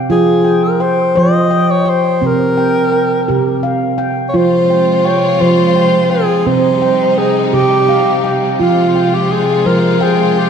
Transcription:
Already playing: F5 G5
0.10 F3 F4 G#4
0.44 G5
0.64 A#4
0.80 C5 G5
1.15 F3 C5 D#5
1.51 G5
1.71 C#5
1.85 G5
1.90 C5
2.21 C3 C4
2.26 A#4
2.57 G5
2.92 G5
3.28 C3 G4
3.63 F5
3.98 G5
4.29 C#5
4.33 C3 F3 G#3 F4 C5
4.70 G5
5.05 C#5 G5
5.41 F3 C5
5.76 G5
6.10 G#4 G5
6.46 C3 G3 C4 D#4 C5
6.82 G5
7.17 G#4 G5
7.47 G#4
7.53 C3 G4
7.89 F5
8.24 G5
8.59 F3 G#3 F4
8.95 G5
9.14 G4
9.29 G#4 G5
9.66 F3 A#4 C5
10.01 G#4 G5
10.36 G4 G5

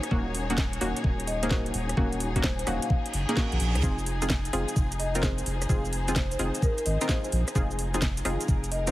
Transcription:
Already playing: D#4 G#4 C#5
0.03 cross-stick, closed hi-hat
0.11 D#1 A#3 C#4 D#4 F#4, kick
0.35 open hi-hat
0.50 A#3 C#4 D#4 F#4, closed hi-hat
0.58 kick, snare
0.73 closed hi-hat
0.81 D#1 A#3 C#4 D#4 F#4, open hi-hat
0.96 closed hi-hat
1.04 D#1, kick
1.20 closed hi-hat
1.27 D#5, open hi-hat
1.43 A#3 C#4 D#4 G#4 C5, closed hi-hat
1.51 A#3 C#4 D#4 F#4, kick, snare
1.66 closed hi-hat
1.74 D#1, open hi-hat
1.89 cross-stick, closed hi-hat
1.97 D#1 A#3 C#4 D#4 F#4, kick
2.13 closed hi-hat
2.20 open hi-hat
2.36 A#3 C#4 D#4 F#4, kick, closed hi-hat
2.44 C5, kick, snare
2.59 C5, closed hi-hat
2.67 D#1 A#3 C#4 D#4 F#4 F5, cross-stick, open hi-hat
2.82 F5, closed hi-hat
2.90 kick, reverse cymbal
3.06 closed hi-hat
3.14 F#1, open hi-hat
3.29 A#3 C#4 D#4 G#4, closed hi-hat
3.37 A#3 D#4 F#4, kick, snare
3.52 A#1, closed hi-hat
3.60 A#1, open hi-hat
3.75 C#2, cross-stick, closed hi-hat
3.83 F1 C4 D#4 F4 G#4, kick, shaker
3.99 shaker
4.06 open hi-hat
4.22 C4 D#4 F4 G#4, closed hi-hat, shaker
4.30 kick, snare, shaker
4.45 closed hi-hat, shaker
4.53 F1 C4 D#4 F4 G#4, cross-stick, open hi-hat
4.69 closed hi-hat, shaker
4.76 F1, kick, shaker
4.92 closed hi-hat, shaker
5.00 C5 D#5, open hi-hat
5.15 C4 D#4 F4 A#4 C5, closed hi-hat, shaker
5.23 C4 D#4 F4 G#4 C5, kick, snare, shaker
5.38 closed hi-hat, shaker
5.46 F1, open hi-hat
5.62 cross-stick, closed hi-hat, shaker
5.69 F1 C4 D#4 F4 G#4, kick, shaker
5.85 shaker
5.93 open hi-hat
6.08 C4 D#4 F4 G#4, closed hi-hat, shaker
6.16 C5, kick, snare, shaker
6.32 C5, closed hi-hat, shaker
6.39 F1 C4 D#4 F4 G#4, open hi-hat
6.55 closed hi-hat, shaker
6.62 A#4, kick, shaker
6.78 A#4, closed hi-hat, shaker
6.86 G#1 D#5, open hi-hat
7.01 C4 D#4 F4 A#4, closed hi-hat, shaker
7.09 C4 D#4 F4 G#4 C5, kick, snare, shaker
7.24 C5, closed hi-hat, shaker
7.32 A#1, open hi-hat
7.48 cross-stick, closed hi-hat, shaker
7.55 F1 C4 D#4 F4 G#4, kick, shaker
7.71 shaker
7.79 open hi-hat
7.94 C4 D#4 F4 G#4, closed hi-hat, shaker
8.02 kick, snare, shaker
8.17 A#4, closed hi-hat, shaker
8.25 F1 C4 D#4 F4 G#4, cross-stick, open hi-hat
8.41 closed hi-hat, shaker
8.48 F1, kick, shaker
8.64 closed hi-hat, shaker
8.72 D#5, open hi-hat
8.87 C4 D#4 F4 A#4 C5, closed hi-hat, shaker

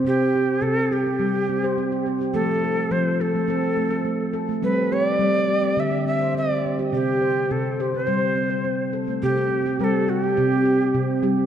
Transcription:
0.05 C3 C4 G4
0.35 G4
0.61 C3 C4 A4
0.91 G4
1.07 C4
1.19 G3
1.35 G4
1.49 C4
1.64 C5
1.78 C4
1.92 G4
2.06 C4
2.21 G4
2.34 F3 A3 A4
2.64 A4
2.91 F3 C4 C5
3.21 A4
3.36 A3
3.48 C4 A4
3.77 A3
3.91 A4
4.05 A3
4.33 A4
4.49 A3
4.62 G3 C4 B4
4.92 G4 C#5
5.07 D5
5.19 G3 C4
5.48 G4
5.62 C4
5.77 D3 E5
5.92 G4
6.06 C4 E5
6.21 C5
6.35 C4 D5
6.50 G4
6.66 C4
6.79 G4
6.92 C3 C4 G4
7.22 C5
7.50 C3 C4 A4
7.80 G4 C5
7.95 C4 C5
8.07 G3 C5
8.36 C4
8.50 C5
8.65 C4
8.93 A4
9.08 A3
9.23 C3 C4 G4
9.37 G4
9.51 C4
9.66 G4
9.79 G3 C4 B4
9.84 A4
10.08 F#4 G4
10.23 C4 G4
10.37 C3 G4
10.52 C4
10.65 G4
10.94 C3 C4
11.23 G3 G4

